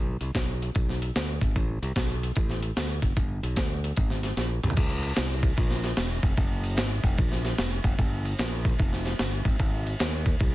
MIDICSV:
0, 0, Header, 1, 3, 480
1, 0, Start_track
1, 0, Tempo, 402145
1, 1857, Time_signature, 4, 2, 24, 8
1, 12591, End_track
2, 0, Start_track
2, 0, Title_t, "Fingered electric bass"
2, 0, Program_c, 0, 33
2, 0, Note_on_c, 0, 35, 95
2, 201, Note_off_c, 0, 35, 0
2, 248, Note_on_c, 0, 36, 89
2, 391, Note_off_c, 0, 36, 0
2, 414, Note_on_c, 0, 35, 94
2, 824, Note_off_c, 0, 35, 0
2, 904, Note_on_c, 0, 35, 92
2, 1309, Note_off_c, 0, 35, 0
2, 1382, Note_on_c, 0, 38, 88
2, 1645, Note_off_c, 0, 38, 0
2, 1690, Note_on_c, 0, 32, 87
2, 1832, Note_off_c, 0, 32, 0
2, 1862, Note_on_c, 0, 33, 102
2, 2126, Note_off_c, 0, 33, 0
2, 2176, Note_on_c, 0, 36, 92
2, 2316, Note_off_c, 0, 36, 0
2, 2339, Note_on_c, 0, 35, 100
2, 2746, Note_off_c, 0, 35, 0
2, 2824, Note_on_c, 0, 33, 98
2, 3229, Note_off_c, 0, 33, 0
2, 3300, Note_on_c, 0, 38, 88
2, 3564, Note_off_c, 0, 38, 0
2, 3608, Note_on_c, 0, 30, 90
2, 3751, Note_off_c, 0, 30, 0
2, 3783, Note_on_c, 0, 31, 101
2, 4046, Note_off_c, 0, 31, 0
2, 4094, Note_on_c, 0, 35, 92
2, 4234, Note_off_c, 0, 35, 0
2, 4261, Note_on_c, 0, 38, 97
2, 4666, Note_off_c, 0, 38, 0
2, 4744, Note_on_c, 0, 32, 107
2, 5148, Note_off_c, 0, 32, 0
2, 5214, Note_on_c, 0, 34, 99
2, 5479, Note_off_c, 0, 34, 0
2, 5532, Note_on_c, 0, 36, 98
2, 5672, Note_off_c, 0, 36, 0
2, 5694, Note_on_c, 0, 37, 98
2, 6101, Note_off_c, 0, 37, 0
2, 6181, Note_on_c, 0, 36, 91
2, 6585, Note_off_c, 0, 36, 0
2, 6656, Note_on_c, 0, 34, 97
2, 7062, Note_off_c, 0, 34, 0
2, 7130, Note_on_c, 0, 28, 96
2, 7396, Note_off_c, 0, 28, 0
2, 7438, Note_on_c, 0, 29, 93
2, 7583, Note_off_c, 0, 29, 0
2, 7611, Note_on_c, 0, 30, 107
2, 8085, Note_off_c, 0, 30, 0
2, 8085, Note_on_c, 0, 32, 95
2, 8353, Note_off_c, 0, 32, 0
2, 8399, Note_on_c, 0, 29, 94
2, 8544, Note_off_c, 0, 29, 0
2, 8579, Note_on_c, 0, 34, 93
2, 8984, Note_off_c, 0, 34, 0
2, 9056, Note_on_c, 0, 29, 94
2, 9320, Note_off_c, 0, 29, 0
2, 9360, Note_on_c, 0, 30, 99
2, 9504, Note_off_c, 0, 30, 0
2, 9534, Note_on_c, 0, 31, 109
2, 9941, Note_off_c, 0, 31, 0
2, 10014, Note_on_c, 0, 34, 101
2, 10422, Note_off_c, 0, 34, 0
2, 10501, Note_on_c, 0, 29, 106
2, 10907, Note_off_c, 0, 29, 0
2, 10975, Note_on_c, 0, 31, 95
2, 11241, Note_off_c, 0, 31, 0
2, 11282, Note_on_c, 0, 32, 90
2, 11427, Note_off_c, 0, 32, 0
2, 11452, Note_on_c, 0, 32, 115
2, 11863, Note_off_c, 0, 32, 0
2, 11937, Note_on_c, 0, 39, 94
2, 12347, Note_off_c, 0, 39, 0
2, 12421, Note_on_c, 0, 36, 102
2, 12591, Note_off_c, 0, 36, 0
2, 12591, End_track
3, 0, Start_track
3, 0, Title_t, "Drums"
3, 247, Note_on_c, 9, 42, 76
3, 366, Note_off_c, 9, 42, 0
3, 414, Note_on_c, 9, 42, 90
3, 415, Note_on_c, 9, 36, 94
3, 423, Note_on_c, 9, 38, 104
3, 533, Note_off_c, 9, 42, 0
3, 534, Note_off_c, 9, 36, 0
3, 542, Note_off_c, 9, 38, 0
3, 745, Note_on_c, 9, 42, 71
3, 864, Note_off_c, 9, 42, 0
3, 894, Note_on_c, 9, 42, 94
3, 903, Note_on_c, 9, 36, 127
3, 1014, Note_off_c, 9, 42, 0
3, 1023, Note_off_c, 9, 36, 0
3, 1066, Note_on_c, 9, 38, 32
3, 1185, Note_off_c, 9, 38, 0
3, 1218, Note_on_c, 9, 42, 72
3, 1337, Note_off_c, 9, 42, 0
3, 1383, Note_on_c, 9, 38, 115
3, 1383, Note_on_c, 9, 42, 85
3, 1502, Note_off_c, 9, 38, 0
3, 1503, Note_off_c, 9, 42, 0
3, 1689, Note_on_c, 9, 36, 100
3, 1703, Note_on_c, 9, 42, 74
3, 1808, Note_off_c, 9, 36, 0
3, 1823, Note_off_c, 9, 42, 0
3, 1861, Note_on_c, 9, 36, 117
3, 1861, Note_on_c, 9, 42, 95
3, 1980, Note_off_c, 9, 36, 0
3, 1981, Note_off_c, 9, 42, 0
3, 2182, Note_on_c, 9, 42, 75
3, 2301, Note_off_c, 9, 42, 0
3, 2336, Note_on_c, 9, 42, 88
3, 2340, Note_on_c, 9, 36, 96
3, 2346, Note_on_c, 9, 38, 108
3, 2456, Note_off_c, 9, 42, 0
3, 2459, Note_off_c, 9, 36, 0
3, 2465, Note_off_c, 9, 38, 0
3, 2667, Note_on_c, 9, 42, 70
3, 2786, Note_off_c, 9, 42, 0
3, 2812, Note_on_c, 9, 42, 93
3, 2824, Note_on_c, 9, 36, 117
3, 2931, Note_off_c, 9, 42, 0
3, 2944, Note_off_c, 9, 36, 0
3, 2979, Note_on_c, 9, 38, 35
3, 3099, Note_off_c, 9, 38, 0
3, 3133, Note_on_c, 9, 42, 67
3, 3253, Note_off_c, 9, 42, 0
3, 3305, Note_on_c, 9, 38, 108
3, 3305, Note_on_c, 9, 42, 94
3, 3424, Note_off_c, 9, 38, 0
3, 3425, Note_off_c, 9, 42, 0
3, 3609, Note_on_c, 9, 36, 94
3, 3615, Note_on_c, 9, 42, 72
3, 3728, Note_off_c, 9, 36, 0
3, 3735, Note_off_c, 9, 42, 0
3, 3779, Note_on_c, 9, 42, 94
3, 3781, Note_on_c, 9, 36, 124
3, 3898, Note_off_c, 9, 42, 0
3, 3900, Note_off_c, 9, 36, 0
3, 4100, Note_on_c, 9, 42, 75
3, 4219, Note_off_c, 9, 42, 0
3, 4253, Note_on_c, 9, 42, 90
3, 4259, Note_on_c, 9, 36, 95
3, 4262, Note_on_c, 9, 38, 113
3, 4373, Note_off_c, 9, 42, 0
3, 4378, Note_off_c, 9, 36, 0
3, 4382, Note_off_c, 9, 38, 0
3, 4585, Note_on_c, 9, 42, 74
3, 4704, Note_off_c, 9, 42, 0
3, 4733, Note_on_c, 9, 42, 96
3, 4743, Note_on_c, 9, 36, 118
3, 4852, Note_off_c, 9, 42, 0
3, 4863, Note_off_c, 9, 36, 0
3, 4896, Note_on_c, 9, 38, 33
3, 5016, Note_off_c, 9, 38, 0
3, 5053, Note_on_c, 9, 42, 67
3, 5054, Note_on_c, 9, 38, 38
3, 5172, Note_off_c, 9, 42, 0
3, 5173, Note_off_c, 9, 38, 0
3, 5218, Note_on_c, 9, 42, 86
3, 5220, Note_on_c, 9, 38, 56
3, 5337, Note_off_c, 9, 42, 0
3, 5339, Note_off_c, 9, 38, 0
3, 5532, Note_on_c, 9, 45, 96
3, 5534, Note_on_c, 9, 42, 74
3, 5611, Note_on_c, 9, 43, 95
3, 5652, Note_off_c, 9, 45, 0
3, 5653, Note_off_c, 9, 42, 0
3, 5688, Note_on_c, 9, 51, 89
3, 5689, Note_on_c, 9, 49, 110
3, 5695, Note_on_c, 9, 36, 127
3, 5730, Note_off_c, 9, 43, 0
3, 5807, Note_off_c, 9, 51, 0
3, 5808, Note_off_c, 9, 49, 0
3, 5815, Note_off_c, 9, 36, 0
3, 6002, Note_on_c, 9, 51, 69
3, 6121, Note_off_c, 9, 51, 0
3, 6157, Note_on_c, 9, 51, 78
3, 6166, Note_on_c, 9, 38, 123
3, 6277, Note_off_c, 9, 51, 0
3, 6286, Note_off_c, 9, 38, 0
3, 6481, Note_on_c, 9, 36, 94
3, 6486, Note_on_c, 9, 51, 64
3, 6600, Note_off_c, 9, 36, 0
3, 6606, Note_off_c, 9, 51, 0
3, 6644, Note_on_c, 9, 51, 82
3, 6657, Note_on_c, 9, 36, 127
3, 6764, Note_off_c, 9, 51, 0
3, 6776, Note_off_c, 9, 36, 0
3, 6810, Note_on_c, 9, 38, 35
3, 6930, Note_off_c, 9, 38, 0
3, 6965, Note_on_c, 9, 51, 55
3, 6966, Note_on_c, 9, 38, 44
3, 7084, Note_off_c, 9, 51, 0
3, 7085, Note_off_c, 9, 38, 0
3, 7126, Note_on_c, 9, 38, 122
3, 7126, Note_on_c, 9, 51, 79
3, 7245, Note_off_c, 9, 38, 0
3, 7246, Note_off_c, 9, 51, 0
3, 7437, Note_on_c, 9, 36, 99
3, 7444, Note_on_c, 9, 51, 59
3, 7556, Note_off_c, 9, 36, 0
3, 7564, Note_off_c, 9, 51, 0
3, 7606, Note_on_c, 9, 51, 85
3, 7610, Note_on_c, 9, 36, 121
3, 7725, Note_off_c, 9, 51, 0
3, 7729, Note_off_c, 9, 36, 0
3, 7919, Note_on_c, 9, 51, 69
3, 8038, Note_off_c, 9, 51, 0
3, 8080, Note_on_c, 9, 51, 79
3, 8089, Note_on_c, 9, 38, 115
3, 8199, Note_off_c, 9, 51, 0
3, 8209, Note_off_c, 9, 38, 0
3, 8398, Note_on_c, 9, 36, 98
3, 8414, Note_on_c, 9, 51, 63
3, 8518, Note_off_c, 9, 36, 0
3, 8533, Note_off_c, 9, 51, 0
3, 8567, Note_on_c, 9, 51, 79
3, 8576, Note_on_c, 9, 36, 127
3, 8686, Note_off_c, 9, 51, 0
3, 8695, Note_off_c, 9, 36, 0
3, 8733, Note_on_c, 9, 38, 36
3, 8853, Note_off_c, 9, 38, 0
3, 8888, Note_on_c, 9, 51, 59
3, 8889, Note_on_c, 9, 38, 39
3, 9007, Note_off_c, 9, 51, 0
3, 9009, Note_off_c, 9, 38, 0
3, 9053, Note_on_c, 9, 38, 117
3, 9053, Note_on_c, 9, 51, 77
3, 9172, Note_off_c, 9, 38, 0
3, 9173, Note_off_c, 9, 51, 0
3, 9360, Note_on_c, 9, 36, 98
3, 9366, Note_on_c, 9, 51, 63
3, 9479, Note_off_c, 9, 36, 0
3, 9485, Note_off_c, 9, 51, 0
3, 9533, Note_on_c, 9, 36, 127
3, 9533, Note_on_c, 9, 51, 82
3, 9652, Note_off_c, 9, 36, 0
3, 9653, Note_off_c, 9, 51, 0
3, 9848, Note_on_c, 9, 51, 65
3, 9967, Note_off_c, 9, 51, 0
3, 10011, Note_on_c, 9, 51, 77
3, 10020, Note_on_c, 9, 38, 117
3, 10130, Note_off_c, 9, 51, 0
3, 10139, Note_off_c, 9, 38, 0
3, 10325, Note_on_c, 9, 36, 97
3, 10338, Note_on_c, 9, 51, 59
3, 10444, Note_off_c, 9, 36, 0
3, 10458, Note_off_c, 9, 51, 0
3, 10487, Note_on_c, 9, 51, 80
3, 10498, Note_on_c, 9, 36, 127
3, 10606, Note_off_c, 9, 51, 0
3, 10618, Note_off_c, 9, 36, 0
3, 10656, Note_on_c, 9, 38, 34
3, 10775, Note_off_c, 9, 38, 0
3, 10806, Note_on_c, 9, 51, 59
3, 10807, Note_on_c, 9, 38, 40
3, 10925, Note_off_c, 9, 51, 0
3, 10926, Note_off_c, 9, 38, 0
3, 10973, Note_on_c, 9, 38, 127
3, 10974, Note_on_c, 9, 51, 78
3, 11092, Note_off_c, 9, 38, 0
3, 11093, Note_off_c, 9, 51, 0
3, 11282, Note_on_c, 9, 36, 104
3, 11288, Note_on_c, 9, 51, 63
3, 11401, Note_off_c, 9, 36, 0
3, 11408, Note_off_c, 9, 51, 0
3, 11450, Note_on_c, 9, 51, 85
3, 11454, Note_on_c, 9, 36, 127
3, 11569, Note_off_c, 9, 51, 0
3, 11574, Note_off_c, 9, 36, 0
3, 11774, Note_on_c, 9, 51, 63
3, 11893, Note_off_c, 9, 51, 0
3, 11930, Note_on_c, 9, 51, 79
3, 11939, Note_on_c, 9, 38, 112
3, 12049, Note_off_c, 9, 51, 0
3, 12058, Note_off_c, 9, 38, 0
3, 12245, Note_on_c, 9, 36, 95
3, 12253, Note_on_c, 9, 51, 60
3, 12364, Note_off_c, 9, 36, 0
3, 12372, Note_off_c, 9, 51, 0
3, 12410, Note_on_c, 9, 51, 79
3, 12420, Note_on_c, 9, 36, 127
3, 12529, Note_off_c, 9, 51, 0
3, 12539, Note_off_c, 9, 36, 0
3, 12591, End_track
0, 0, End_of_file